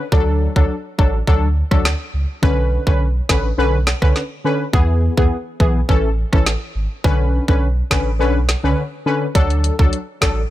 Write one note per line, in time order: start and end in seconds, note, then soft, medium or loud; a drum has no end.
0.12 0.48 D2 loud
0.12 0.52 F#3 medium
0.12 0.53 D4 medium
0.12 0.53 A4 loud
0.12 kick loud
0.56 0.67 D2 loud
0.56 0.75 F#3 medium
0.56 0.75 D4 medium
0.56 0.75 A4 medium
0.56 kick loud
0.98 1.22 A1 medium
0.98 1.19 F#3 medium
0.98 1.19 D4 medium
0.98 1.19 A4 medium
0.98 kick medium
1.27 1.63 D2 loud
1.27 1.47 F#3 medium
1.27 1.48 D4 medium
1.27 1.48 A4 loud
1.27 kick medium
1.71 1.95 D2 medium
1.71 1.90 F#3 medium
1.71 1.91 D4 medium
1.71 1.91 A4 medium
1.71 kick medium
1.71 cross-stick medium
1.85 snare loud
2.14 2.26 C#2 medium
2.42 2.78 B1 loud
2.42 2.83 D3 medium
2.42 2.83 C#4 medium
2.42 2.83 B4 loud
2.42 kick loud
2.87 3.21 B1 loud
2.87 3.06 D3 medium
2.87 3.06 C#4 medium
2.87 3.06 B4 medium
2.87 kick loud
3.29 3.53 A1 medium
3.29 3.49 D3 medium
3.29 3.50 C#4 medium
3.29 3.50 B4 medium
3.29 kick medium
3.29 snare loud
3.58 3.94 B1 loud
3.58 3.78 D3 medium
3.58 3.78 C#4 medium
3.58 3.78 B4 loud
3.87 snare loud
4.02 4.13 C#2 medium
4.02 4.21 D3 medium
4.02 4.21 C#4 medium
4.02 4.21 B4 medium
4.02 kick medium
4.02 cross-stick medium
4.16 snare medium
4.45 4.65 D3 medium
4.45 4.65 C#4 medium
4.45 4.65 B4 medium
4.73 5.09 E2 loud
4.73 5.14 E3 medium
4.73 5.14 B3 medium
4.73 5.14 G#4 loud
4.73 kick loud
5.17 5.29 E2 medium
5.17 5.37 E3 medium
5.17 5.37 B3 medium
5.17 5.37 G#4 medium
5.17 kick loud
5.60 5.83 B1 loud
5.60 5.80 E3 medium
5.60 5.80 B3 medium
5.60 5.80 G#4 medium
5.60 kick medium
5.89 6.25 A1 loud
5.89 6.09 E3 medium
5.89 6.09 C#4 medium
5.89 6.09 A4 loud
5.89 kick medium
6.33 6.56 A1 medium
6.33 6.52 E3 medium
6.33 6.52 C#4 medium
6.33 6.52 A4 medium
6.33 kick medium
6.33 cross-stick medium
6.46 snare loud
6.75 6.88 G#1 medium
7.04 7.40 B1 loud
7.04 7.45 D3 loud
7.04 7.45 C#4 medium
7.04 7.45 B4 loud
7.04 kick loud
7.48 7.83 B1 loud
7.48 7.67 D3 medium
7.48 7.68 C#4 medium
7.48 7.68 B4 medium
7.48 kick medium
7.91 8.21 A1 medium
7.91 8.11 D3 medium
7.91 8.11 C#4 medium
7.91 8.11 B4 medium
7.91 kick medium
7.91 snare loud
8.19 8.55 B1 loud
8.19 8.40 D3 medium
8.19 8.40 C#4 medium
8.19 8.40 B4 loud
8.49 snare loud
8.64 8.75 C#2 medium
8.64 8.83 D3 medium
8.64 8.83 C#4 medium
8.64 8.83 B4 medium
9.06 9.26 D3 medium
9.06 9.26 C#4 medium
9.06 9.27 B4 medium
9.35 9.71 D2 loud
9.35 9.75 F#3 medium
9.35 9.76 D4 medium
9.35 9.76 A4 loud
9.35 kick loud
9.35 closed hi-hat medium
9.50 closed hi-hat medium
9.64 closed hi-hat medium
9.79 9.90 D2 loud
9.79 9.98 F#3 medium
9.79 9.98 D4 medium
9.79 9.98 A4 medium
9.79 kick loud
9.93 closed hi-hat medium
10.21 10.45 A1 medium
10.21 10.42 F#3 medium
10.21 10.42 D4 medium
10.21 10.42 A4 medium
10.21 kick medium
10.21 snare loud
10.21 closed hi-hat medium